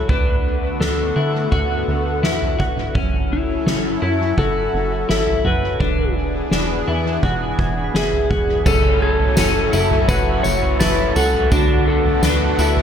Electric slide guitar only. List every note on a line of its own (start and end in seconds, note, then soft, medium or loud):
0.10 0.83 B4 medium
0.81 2.55 A4 medium
3.33 4.35 E4 medium
4.39 5.10 A4 medium
5.11 5.47 A4 medium
5.47 6.13 B4 medium
7.96 8.67 G#4 medium
8.68 9.01 A4 medium
9.02 10.08 A4 medium
10.08 10.46 B4 loud
10.43 10.79 C#5 loud
10.80 11.16 B4 loud
11.17 11.50 A4 medium
11.52 11.89 F#4 medium
11.88 12.24 A4 medium
12.24 12.82 B4 medium